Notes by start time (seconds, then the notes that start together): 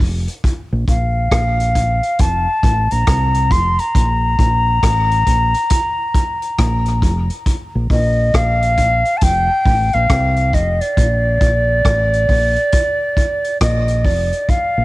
0.00 F1, kick, open hi-hat
0.28 closed hi-hat
0.44 kick, closed hi-hat
0.72 A#1
0.88 A#1 F5, kick, closed hi-hat
1.31 A#1, kick, cross-stick, closed hi-hat
1.60 closed hi-hat
1.75 kick, closed hi-hat
2.03 closed hi-hat
2.19 F1 A5, kick, closed hi-hat
2.63 A1, kick, closed hi-hat
2.91 A#1 A#5, closed hi-hat
3.07 C2, kick, cross-stick, closed hi-hat
3.34 closed hi-hat
3.51 F1 C6, kick, closed hi-hat
3.79 A#5, closed hi-hat
3.95 A#1, kick, closed hi-hat
4.39 A#1, kick, closed hi-hat
4.83 A1, kick, cross-stick, closed hi-hat
5.11 closed hi-hat
5.26 A#1, kick, closed hi-hat
5.54 closed hi-hat
5.70 kick, closed hi-hat
6.14 kick, closed hi-hat
6.42 closed hi-hat
6.58 A#1, kick, cross-stick, closed hi-hat
6.86 closed hi-hat
7.02 F1, kick, closed hi-hat
7.30 closed hi-hat
7.46 kick, closed hi-hat
7.75 A#1
7.90 A#1 D#5, kick, open hi-hat
8.34 A#1 F5, kick, cross-stick, closed hi-hat
8.62 closed hi-hat
8.77 kick, closed hi-hat
9.05 closed hi-hat
9.17 A5, closed hi-hat
9.22 F1 G5, kick
9.66 A1, kick, open hi-hat
9.93 A#1 F5, closed hi-hat
10.09 C2, kick, cross-stick, closed hi-hat
10.36 closed hi-hat
10.53 F1 D#5, kick, closed hi-hat
10.81 D5, closed hi-hat
10.97 A#1, kick, closed hi-hat
11.41 A#1, kick, closed hi-hat
11.85 A1, kick, cross-stick, closed hi-hat
12.13 closed hi-hat
12.29 A#1, kick, open hi-hat
12.56 closed hi-hat
12.72 kick, closed hi-hat
13.17 kick, closed hi-hat
13.44 closed hi-hat
13.61 A#1 D#5, kick, cross-stick, closed hi-hat
13.88 closed hi-hat
14.05 F1 D5, kick, open hi-hat
14.33 closed hi-hat
14.49 F5, kick, closed hi-hat
14.78 A#1